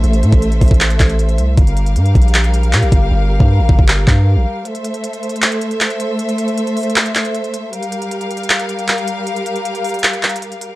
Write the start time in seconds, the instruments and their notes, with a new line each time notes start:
Already playing: string section A3 A4 C5 E5
0.04 808-style bass A1, closed hi-hat
0.13 closed hi-hat
0.23 808-style bass A2, closed hi-hat
0.33 808-style bass A1, kick, closed hi-hat
0.42 closed hi-hat
0.52 closed hi-hat
0.61 808-style bass A1, kick, closed hi-hat, open hi-hat
0.68 808-style bass A1, kick, closed hi-hat
0.74 closed hi-hat
0.81 clap, closed hi-hat
0.90 closed hi-hat
1.00 808-style bass A1, kick, clap, closed hi-hat
1.09 closed hi-hat
1.19 closed hi-hat
1.29 closed hi-hat
1.38 808-style bass C2, closed hi-hat
1.58 808-style bass G1, string section G3 G4 A#4 F5, kick, closed hi-hat
1.67 closed hi-hat
1.77 closed hi-hat
1.86 closed hi-hat
1.96 808-style bass G2, closed hi-hat
2.06 closed hi-hat
2.15 808-style bass A#1, kick, closed hi-hat
2.22 closed hi-hat
2.28 closed hi-hat
2.34 clap, closed hi-hat
2.44 closed hi-hat
2.54 closed hi-hat
2.63 closed hi-hat
2.73 808-style bass A#2, clap, closed hi-hat
2.83 808-style bass A#1, closed hi-hat
2.92 808-style bass G1, kick, closed hi-hat
3.11 808-style bass G1
3.40 808-style bass G2, kick
3.60 808-style bass A1
3.69 808-style bass G1, kick
3.79 808-style bass G1, kick
3.88 clap
4.08 808-style bass G2, kick, clap
4.36 808-style bass A#1
4.65 string section A3 A4 C5 E5, closed hi-hat
4.75 closed hi-hat
4.84 closed hi-hat
4.94 closed hi-hat
5.04 closed hi-hat
5.13 closed hi-hat
5.23 closed hi-hat
5.29 closed hi-hat
5.36 closed hi-hat
5.42 clap, closed hi-hat
5.52 closed hi-hat
5.61 closed hi-hat
5.71 closed hi-hat
5.81 clap, closed hi-hat
5.90 closed hi-hat
6.00 closed hi-hat
6.19 closed hi-hat
6.29 closed hi-hat
6.38 closed hi-hat
6.48 closed hi-hat
6.58 closed hi-hat
6.67 closed hi-hat
6.77 closed hi-hat, open hi-hat
6.83 closed hi-hat
6.90 closed hi-hat
6.96 clap, closed hi-hat
7.06 closed hi-hat
7.15 clap, closed hi-hat
7.25 closed hi-hat
7.34 closed hi-hat
7.44 closed hi-hat
7.54 closed hi-hat
7.73 string section G3 G4 A#4 F5, closed hi-hat
7.83 closed hi-hat
7.92 closed hi-hat
8.02 closed hi-hat
8.11 closed hi-hat
8.21 closed hi-hat
8.31 closed hi-hat
8.37 closed hi-hat
8.43 closed hi-hat
8.50 clap, closed hi-hat
8.59 closed hi-hat
8.69 closed hi-hat
8.79 closed hi-hat
8.88 clap, closed hi-hat
8.98 closed hi-hat
9.08 closed hi-hat
9.27 closed hi-hat
9.36 closed hi-hat
9.46 closed hi-hat
9.56 closed hi-hat
9.65 closed hi-hat
9.75 closed hi-hat
9.84 closed hi-hat, open hi-hat
9.89 closed hi-hat
9.94 closed hi-hat
9.99 closed hi-hat
10.04 clap, closed hi-hat
10.13 closed hi-hat
10.23 clap, closed hi-hat
10.29 closed hi-hat
10.36 closed hi-hat
10.42 closed hi-hat
10.52 closed hi-hat
10.61 closed hi-hat